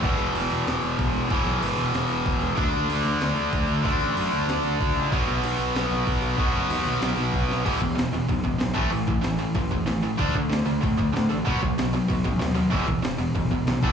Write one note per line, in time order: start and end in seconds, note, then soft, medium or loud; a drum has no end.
0.02 0.14 E1 medium
0.02 1.28 E2 medium
0.02 1.30 B2 loud
0.02 1.30 E3 medium
0.02 kick loud
0.02 crash medium
0.18 0.29 E1 medium
0.35 0.46 E1 medium
0.35 crash medium
0.51 0.62 E1 medium
0.67 0.77 E1 medium
0.67 snare loud
0.67 crash medium
0.83 0.93 E1 medium
0.99 1.09 E1 medium
0.99 kick loud
0.99 crash medium
1.13 1.24 E1 medium
1.29 1.41 E1 medium
1.29 2.56 E2 medium
1.29 2.55 B2 loud
1.29 2.57 E3 loud
1.29 kick loud
1.29 crash medium
1.46 1.57 B1 loud
1.62 1.73 G#1 loud
1.62 crash medium
1.78 1.89 E1 medium
1.93 2.04 E1 medium
1.93 snare loud
1.93 crash medium
2.09 2.20 E1 medium
2.26 2.37 E1 medium
2.26 kick medium
2.26 crash medium
2.42 2.52 E1 medium
2.56 2.68 D2 medium
2.56 3.82 D3 loud
2.56 3.83 A3 loud
2.56 3.84 D4 loud
2.56 kick loud
2.56 crash medium
2.74 2.84 D2 medium
2.90 3.00 D2 loud
2.90 crash medium
3.05 3.16 D2 medium
3.20 3.31 D2 loud
3.20 snare loud
3.20 crash medium
3.36 3.47 D2 medium
3.53 3.63 D2 medium
3.53 kick medium
3.53 crash medium
3.68 3.79 D2 medium
3.83 3.95 D2 loud
3.83 5.10 D3 loud
3.83 5.10 A3 medium
3.83 5.11 D4 loud
3.83 kick loud
3.83 crash medium
4.02 4.12 A1 medium
4.16 4.27 F#2 loud
4.16 crash medium
4.32 4.43 D2 medium
4.48 4.59 D2 loud
4.48 snare loud
4.48 crash medium
4.64 4.75 D2 medium
4.81 4.91 D2 medium
4.81 kick medium
4.81 crash medium
4.96 5.06 C#2 loud
5.11 5.23 B1 medium
5.11 6.36 B2 medium
5.11 6.37 F#3 medium
5.11 6.39 B3 loud
5.11 kick loud
5.11 crash medium
5.28 5.38 B1 medium
5.42 5.53 B1 medium
5.42 crash medium
5.59 5.69 B1 medium
5.75 5.86 B1 loud
5.75 snare loud
5.75 crash medium
5.91 6.01 B1 loud
6.07 6.17 B1 medium
6.07 kick medium
6.07 crash medium
6.22 6.33 B1 medium
6.37 6.49 B1 medium
6.37 7.63 B2 medium
6.37 7.64 F#3 loud
6.37 7.64 B3 loud
6.37 kick loud
6.37 crash medium
6.54 6.64 F#1 medium
6.70 6.81 D#2 loud
6.70 crash medium
6.86 6.96 B1 medium
7.01 7.12 B1 medium
7.01 snare loud
7.01 crash medium
7.16 7.27 B1 medium
7.34 7.44 B1 medium
7.34 kick medium
7.34 crash medium
7.50 7.60 B1 medium
7.50 snare medium
7.65 7.76 E1 medium
7.65 7.79 E2 medium
7.65 7.80 B2 loud
7.65 7.80 E3 loud
7.65 kick loud
7.65 crash loud
7.65 crash medium
7.81 7.94 E2 medium
7.81 7.92 E2 loud
7.81 7.95 B2 medium
7.81 kick medium
7.95 8.07 E1 medium
7.95 8.10 E2 medium
7.95 8.11 B2 medium
7.95 snare loud
7.95 crash medium
8.13 8.23 E1 medium
8.13 8.27 E2 medium
8.13 8.28 B2 medium
8.29 8.39 B1 medium
8.29 8.43 E2 medium
8.29 8.43 B2 loud
8.29 kick loud
8.29 crash medium
8.44 8.55 E1 medium
8.44 8.58 E2 medium
8.44 8.58 B2 medium
8.44 kick medium
8.59 8.71 B1 medium
8.59 8.74 E2 medium
8.59 8.73 B2 medium
8.59 snare loud
8.59 crash medium
8.74 8.86 A1 loud
8.74 8.89 A2 medium
8.74 8.90 E3 loud
8.74 8.90 A3 loud
8.74 kick medium
8.90 9.02 A1 medium
8.90 9.05 A2 medium
8.90 9.06 E3 medium
8.90 crash medium
9.07 9.18 A1 medium
9.07 9.20 A2 medium
9.07 9.21 E3 medium
9.07 kick loud
9.21 9.44 A1 medium
9.21 9.37 A2 medium
9.21 9.37 E3 medium
9.21 snare loud
9.21 crash medium
9.39 9.53 A2 medium
9.39 9.53 E3 medium
9.55 9.66 A1 loud
9.55 9.69 A2 medium
9.55 9.70 E3 medium
9.55 kick loud
9.55 crash medium
9.71 9.81 F#1 medium
9.71 9.85 A2 medium
9.71 9.85 E3 medium
9.71 kick medium
9.86 10.07 A1 medium
9.86 10.01 A2 medium
9.86 10.01 E3 medium
9.86 snare loud
9.86 crash medium
10.03 10.17 A2 medium
10.03 10.17 E3 medium
10.17 10.29 D2 medium
10.17 10.33 D3 loud
10.17 10.33 A3 loud
10.17 10.33 D4 loud
10.17 kick loud
10.17 crash medium
10.35 10.48 D3 medium
10.35 10.45 D3 medium
10.35 10.48 A3 medium
10.35 kick medium
10.49 10.61 D2 medium
10.49 10.64 D3 medium
10.49 10.64 A3 medium
10.49 snare loud
10.49 crash medium
10.66 10.76 D2 medium
10.66 10.80 D3 medium
10.66 10.80 A3 medium
10.81 10.94 A2 loud
10.81 10.96 D3 medium
10.81 10.96 A3 loud
10.81 kick loud
10.81 crash medium
10.98 11.09 D2 medium
10.98 11.12 D3 medium
10.98 11.12 A3 medium
10.98 kick medium
11.14 11.25 A2 loud
11.14 11.28 D3 medium
11.14 11.28 A3 medium
11.14 snare loud
11.14 crash medium
11.30 11.41 A1 medium
11.30 11.44 D3 medium
11.30 11.44 A3 medium
11.45 11.57 B1 medium
11.45 11.60 B2 medium
11.45 11.60 F#3 loud
11.45 11.60 B3 loud
11.45 kick loud
11.45 crash medium
11.62 11.72 B1 medium
11.62 11.76 B2 medium
11.62 11.76 F#3 medium
11.62 kick medium
11.78 11.99 B1 loud
11.78 11.92 B2 medium
11.78 11.92 F#3 medium
11.78 snare loud
11.78 crash medium
11.93 12.07 B2 medium
11.93 12.07 F#3 medium
12.08 12.20 B1 loud
12.08 12.23 B2 medium
12.08 12.23 F#3 medium
12.08 kick loud
12.08 crash medium
12.24 12.36 A1 medium
12.24 12.38 B2 medium
12.24 12.38 F#3 medium
12.24 kick medium
12.39 12.62 D#2 medium
12.39 12.53 B2 medium
12.39 12.54 F#3 medium
12.39 snare loud
12.39 crash medium
12.54 12.70 B2 medium
12.54 12.70 F#3 medium
12.70 12.83 E1 medium
12.70 12.85 E2 loud
12.70 12.85 B2 loud
12.70 12.87 E3 loud
12.70 kick loud
12.70 crash medium
12.86 13.01 E2 medium
12.86 12.98 E2 medium
12.86 13.01 B2 medium
12.86 kick medium
13.03 13.14 E1 medium
13.03 13.17 E2 medium
13.03 13.17 B2 medium
13.03 snare loud
13.03 crash medium
13.18 13.30 E1 medium
13.18 13.33 E2 medium
13.18 13.33 B2 medium
13.35 13.46 B1 medium
13.35 13.49 E2 medium
13.35 13.49 B2 medium
13.35 kick loud
13.35 crash medium
13.51 13.62 E1 medium
13.51 13.65 E2 medium
13.51 13.66 B2 medium
13.51 kick medium
13.66 13.77 B1 loud
13.66 13.81 E2 medium
13.66 13.81 B2 loud
13.66 snare loud
13.66 crash medium
13.83 13.92 A1 medium
13.83 13.92 A2 medium
13.83 13.92 E3 medium
13.83 13.92 A3 loud
13.83 kick loud